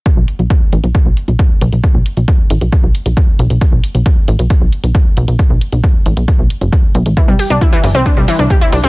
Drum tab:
HH |x-xxx-xxx-xxx-xx|x-xxx-xxx-xxx-xx|x-xxx-xxx-xxx-xx|x-xxx-xxx-xxx-xx|
BD |o---o---o---o---|o---o---o---o---|o---o---o---o---|o---o---o---o---|

HH |x-oxx-oxx-oxx-ox|
BD |o---o---o---o---|